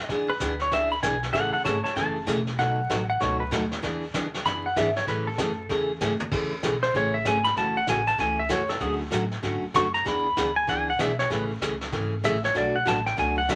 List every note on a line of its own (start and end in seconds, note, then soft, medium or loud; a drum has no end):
0.09 0.39 E2 medium
0.09 0.31 E3 medium
0.09 0.31 B3 medium
0.09 0.31 D4 medium
0.09 0.31 G#4 medium
0.09 brush sweep medium
0.09 kick soft
0.09 snare medium
0.29 0.60 B4 loud
0.40 0.71 D2 loud
0.40 0.52 E3 medium
0.40 0.52 B3 medium
0.40 0.53 D4 medium
0.40 0.53 G#4 medium
0.40 kick soft
0.40 snare medium
0.40 hi-hat pedal medium
0.59 0.72 C#5 medium
0.59 snare soft
0.71 1.02 C#2 medium
0.71 0.92 E3 medium
0.71 0.93 B3 medium
0.71 0.93 D4 medium
0.71 0.93 G#4 medium
0.71 0.91 E5 medium
0.71 brush sweep soft
0.71 kick soft
0.71 snare soft
0.92 1.02 B5 medium
1.03 1.33 B1 medium
1.03 1.14 E3 medium
1.03 1.14 B3 medium
1.03 1.15 D4 medium
1.03 1.15 G#4 medium
1.03 1.22 G#5 medium
1.03 kick soft
1.03 snare medium
1.03 hi-hat pedal medium
1.23 snare soft
1.33 1.52 A1 medium
1.33 1.54 C#3 medium
1.33 1.55 E3 medium
1.33 1.55 A3 medium
1.33 1.55 C#4 medium
1.33 1.55 G#4 medium
1.33 1.51 A4 medium
1.33 1.52 F#5 medium
1.33 brush sweep soft
1.33 kick soft
1.33 snare soft
1.53 1.64 A4 medium
1.53 1.65 F#5 medium
1.64 1.83 G#1 medium
1.64 1.76 C#3 medium
1.64 1.76 E3 medium
1.64 1.76 A3 medium
1.64 1.77 C#4 medium
1.64 1.77 G#4 medium
1.64 1.82 C#5 medium
1.64 1.83 A5 medium
1.64 kick soft
1.64 snare medium
1.64 hi-hat pedal medium
1.84 1.95 C#5 medium
1.84 1.95 A5 medium
1.84 snare soft
1.96 2.26 F#1 medium
1.96 2.17 C#3 medium
1.96 2.17 E3 medium
1.96 2.17 A3 medium
1.96 2.17 C#4 medium
1.96 2.17 G#4 medium
1.96 2.27 A5 loud
1.96 brush sweep soft
1.96 kick soft
1.96 snare soft
2.27 2.57 E1 medium
2.27 2.38 C#3 medium
2.27 2.39 E3 medium
2.27 2.39 A3 medium
2.27 2.39 C#4 medium
2.27 2.39 G#4 medium
2.27 kick soft
2.27 snare medium
2.27 hi-hat pedal medium
2.47 snare soft
2.58 2.89 B1 medium
2.58 2.79 B2 medium
2.58 2.79 F#3 medium
2.58 2.79 A3 medium
2.58 2.79 D#4 medium
2.58 2.80 F#4 medium
2.58 3.08 F#5 loud
2.58 brush sweep soft
2.58 kick soft
2.58 snare soft
2.90 3.20 A1 medium
2.90 3.01 B2 medium
2.90 3.01 F#3 medium
2.90 3.01 A3 medium
2.90 3.01 D#4 medium
2.90 3.01 F#4 medium
2.90 kick soft
2.90 snare medium
2.90 hi-hat pedal medium
3.10 3.21 F#5 medium
3.20 3.51 C#2 medium
3.20 3.41 B2 medium
3.20 3.41 F#3 medium
3.20 3.42 A3 medium
3.20 3.42 D#4 medium
3.20 3.42 F#4 medium
3.20 3.40 C#5 medium
3.20 brush sweep soft
3.20 kick soft
3.20 snare soft
3.40 3.51 B4 loud
3.51 3.82 D#2 medium
3.51 3.63 B2 medium
3.51 3.63 F#3 medium
3.51 3.63 A3 medium
3.51 3.63 D#4 medium
3.51 3.63 F#4 medium
3.51 kick soft
3.51 snare medium
3.51 hi-hat pedal medium
3.71 snare soft
3.83 4.13 E2 medium
3.83 4.03 E3 medium
3.83 4.04 B3 medium
3.83 4.04 D4 medium
3.83 4.04 G#4 medium
3.83 brush sweep soft
3.83 kick soft
3.83 snare soft
4.14 4.44 D2 medium
4.14 4.25 E3 medium
4.14 4.26 B3 medium
4.14 4.26 D4 medium
4.14 4.26 G#4 medium
4.14 kick soft
4.14 snare medium
4.14 hi-hat pedal medium
4.34 snare soft
4.45 4.75 F#2 medium
4.45 4.66 E3 medium
4.45 4.66 B3 medium
4.45 4.66 D4 medium
4.45 4.66 G#4 medium
4.45 4.64 B5 medium
4.45 brush sweep soft
4.45 kick soft
4.45 snare soft
4.66 4.76 F#5 medium
4.76 5.06 G#2 medium
4.76 4.88 E3 medium
4.76 4.88 B3 medium
4.76 4.88 D4 medium
4.76 4.88 G#4 medium
4.76 4.96 E5 medium
4.76 kick soft
4.76 snare medium
4.76 hi-hat pedal medium
4.96 5.08 C#5 medium
4.96 snare soft
5.07 5.37 A2 medium
5.07 5.28 C#3 medium
5.07 5.28 E3 medium
5.07 5.28 A3 medium
5.07 5.28 C#4 medium
5.07 5.28 G#4 medium
5.07 5.27 B4 medium
5.07 brush sweep medium
5.07 kick soft
5.07 snare soft
5.27 5.87 A4 medium
5.38 5.68 F#2 loud
5.38 5.50 C#3 medium
5.38 5.50 E3 medium
5.38 5.50 A3 medium
5.38 5.50 C#4 medium
5.38 5.51 G#4 medium
5.38 kick soft
5.38 snare medium
5.38 hi-hat pedal medium
5.69 6.00 E2 loud
5.69 5.90 C#3 medium
5.69 5.90 E3 medium
5.69 5.90 A3 medium
5.69 5.91 C#4 medium
5.69 5.91 G#4 medium
5.69 brush sweep soft
5.69 kick soft
5.69 snare soft
6.00 6.19 G#2 medium
6.00 6.12 C#3 medium
6.00 6.12 E3 medium
6.00 6.12 A3 medium
6.00 6.12 C#4 medium
6.00 6.13 G#4 medium
6.00 snare soft
6.00 hi-hat pedal medium
6.20 floor tom medium
6.31 6.62 E2 medium
6.31 6.52 C#3 medium
6.31 6.52 E3 medium
6.31 6.53 A3 medium
6.31 6.53 C#4 medium
6.31 6.53 G#4 medium
6.31 brush sweep soft
6.31 kick medium
6.31 snare soft
6.31 crash medium
6.63 6.93 B1 medium
6.63 6.74 C#3 medium
6.63 6.75 E3 medium
6.63 6.75 A3 medium
6.63 6.75 C#4 medium
6.63 6.75 G#4 medium
6.63 kick soft
6.63 snare medium
6.63 hi-hat pedal medium
6.82 6.94 C5 medium
6.82 snare soft
6.94 7.24 A1 medium
6.94 7.15 C#3 medium
6.94 7.15 E3 medium
6.94 7.15 A3 medium
6.94 7.16 C#4 medium
6.94 7.16 G#4 medium
6.94 7.14 C#5 medium
6.94 brush sweep soft
6.94 kick soft
6.94 snare soft
7.14 7.25 E5 medium
7.25 7.55 G#1 medium
7.25 7.37 C#3 medium
7.25 7.37 E3 medium
7.25 7.37 A3 medium
7.25 7.37 C#4 medium
7.25 7.37 G#4 medium
7.25 7.45 G#5 medium
7.25 kick soft
7.25 snare medium
7.25 hi-hat pedal medium
7.44 7.56 B5 loud
7.44 snare soft
7.56 7.86 F#1 medium
7.56 7.77 C#3 medium
7.56 7.78 E3 medium
7.56 7.78 A3 medium
7.56 7.78 C#4 medium
7.56 7.78 F#4 medium
7.56 7.76 A5 medium
7.56 brush sweep soft
7.56 kick soft
7.56 snare soft
7.77 7.88 F#5 loud
7.87 8.18 A1 medium
7.87 7.99 C#3 medium
7.87 7.99 E3 medium
7.87 7.99 A3 medium
7.87 8.00 C#4 medium
7.87 8.00 F#4 medium
7.87 8.08 G#5 medium
7.87 kick soft
7.87 snare medium
7.87 hi-hat pedal medium
8.07 8.18 A5 loud
8.07 snare soft
8.18 8.48 C#2 loud
8.18 8.39 C#3 medium
8.18 8.39 E3 medium
8.18 8.39 A3 medium
8.18 8.40 C#4 medium
8.18 8.40 F#4 medium
8.18 8.38 G#5 medium
8.18 brush sweep soft
8.18 kick soft
8.18 snare soft
8.39 8.50 E5 medium
8.49 8.80 F#2 medium
8.49 8.61 C#3 medium
8.49 8.61 E3 medium
8.49 8.61 A3 medium
8.49 8.61 C#4 medium
8.49 8.61 F#4 medium
8.49 8.70 C#5 medium
8.49 kick soft
8.49 snare medium
8.49 hi-hat pedal medium
8.69 8.80 A4 medium
8.69 snare soft
8.80 9.11 D2 medium
8.80 9.01 D3 medium
8.80 9.02 F#3 medium
8.80 9.02 A3 medium
8.80 9.02 C#4 medium
8.80 9.02 F#4 medium
8.80 8.93 G#4 medium
8.80 brush sweep medium
8.80 kick soft
8.80 snare soft
9.11 9.42 A2 loud
9.11 9.23 D3 medium
9.11 9.23 F#3 medium
9.11 9.23 A3 medium
9.11 9.23 C#4 medium
9.11 9.23 F#4 medium
9.11 kick soft
9.11 snare medium
9.11 hi-hat pedal medium
9.31 snare soft
9.43 9.61 G#2 medium
9.43 9.64 D3 medium
9.43 9.64 F#3 medium
9.43 9.64 A3 medium
9.43 9.64 C#4 medium
9.43 9.64 F#4 medium
9.43 brush sweep soft
9.43 kick soft
9.43 snare soft
9.62 muted upright bass stroke soft
9.74 10.04 F#2 medium
9.74 9.86 D3 medium
9.74 9.86 F#3 medium
9.74 9.86 A3 medium
9.74 9.86 C#4 medium
9.74 9.86 F#4 medium
9.74 9.94 C#6 medium
9.74 kick soft
9.74 snare medium
9.74 hi-hat pedal medium
9.94 10.05 A#5 loud
9.94 snare soft
10.05 10.36 E2 medium
10.05 10.26 E3 medium
10.05 10.26 B3 medium
10.05 10.26 D4 medium
10.05 10.26 G#4 medium
10.05 10.54 B5 loud
10.05 brush sweep medium
10.05 kick soft
10.05 snare soft
10.37 10.67 D2 medium
10.37 10.48 E3 medium
10.37 10.48 B3 medium
10.37 10.49 D4 medium
10.37 10.49 G#4 medium
10.37 kick soft
10.37 snare medium
10.37 hi-hat pedal medium
10.56 10.68 G#5 medium
10.67 10.98 C#2 medium
10.67 10.88 E3 medium
10.67 10.89 B3 medium
10.67 10.89 D4 medium
10.67 10.89 G#4 medium
10.67 10.79 F#5 medium
10.67 brush sweep soft
10.67 kick soft
10.67 snare soft
10.79 10.89 G#5 medium
10.90 10.99 F#5 medium
10.99 11.29 B1 medium
10.99 11.10 E3 medium
10.99 11.11 B3 medium
10.99 11.11 D4 medium
10.99 11.11 G#4 medium
10.99 11.19 E5 medium
10.99 kick soft
10.99 snare medium
10.99 hi-hat pedal medium
11.19 11.30 C#5 medium
11.19 snare soft
11.30 11.60 A1 medium
11.30 11.51 C#3 medium
11.30 11.51 E3 medium
11.30 11.51 A3 medium
11.30 11.51 C#4 medium
11.30 11.51 G#4 medium
11.30 11.44 B4 medium
11.30 brush sweep medium
11.30 kick soft
11.30 snare soft
11.61 11.91 C#2 medium
11.61 11.73 C#3 medium
11.61 11.73 E3 medium
11.61 11.73 A3 medium
11.61 11.73 C#4 medium
11.61 11.74 G#4 medium
11.61 kick soft
11.61 snare medium
11.61 hi-hat pedal medium
11.81 snare soft
11.92 12.23 G#1 loud
11.92 12.13 C#3 medium
11.92 12.14 E3 medium
11.92 12.14 A3 medium
11.92 12.14 C#4 medium
11.92 12.14 G#4 medium
11.92 brush sweep medium
11.92 kick soft
11.92 snare soft
12.24 12.54 A1 medium
12.24 12.35 C#3 medium
12.24 12.35 E3 medium
12.24 12.36 A3 medium
12.24 12.36 C#4 medium
12.24 12.36 G#4 medium
12.24 12.44 E5 medium
12.24 kick soft
12.24 snare medium
12.24 hi-hat pedal medium
12.44 12.55 C#5 medium
12.44 snare soft
12.54 12.85 B1 medium
12.54 12.75 B2 medium
12.54 12.76 F#3 medium
12.54 12.76 A3 medium
12.54 12.76 D4 medium
12.54 12.76 F#4 medium
12.54 12.75 D5 medium
12.54 brush sweep soft
12.54 kick soft
12.54 snare soft
12.76 12.86 F#5 medium
12.85 13.16 A1 loud
12.85 12.97 B2 medium
12.85 12.97 F#3 medium
12.85 12.97 A3 medium
12.85 12.98 D4 medium
12.85 12.98 F#4 medium
12.85 13.06 A5 loud
12.85 kick soft
12.85 snare medium
12.85 hi-hat pedal medium
13.06 13.17 G5 loud
13.06 snare soft
13.16 13.48 C#2 medium
13.16 13.38 B2 medium
13.16 13.38 F#3 medium
13.16 13.38 A3 medium
13.16 13.38 D4 medium
13.16 13.38 F#4 medium
13.16 13.37 G#5 loud
13.16 brush sweep soft
13.16 kick soft
13.16 snare soft
13.38 13.49 F#5 medium
13.49 13.55 D2 medium
13.49 13.55 B2 medium
13.49 13.55 F#3 medium
13.49 13.55 A3 medium
13.49 13.55 D4 medium
13.49 13.55 F#4 medium
13.49 13.55 E5 medium
13.49 kick soft
13.49 snare medium
13.49 hi-hat pedal medium